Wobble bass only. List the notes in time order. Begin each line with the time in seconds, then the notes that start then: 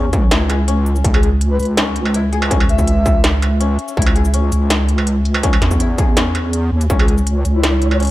Already playing: E2
0.31 C#2
1.04 C#2
1.59 C#2
2.69 C#2
3.97 C#2
4.52 C#2
5.62 E2
6.71 D#2
6.90 C#2
7.45 C#2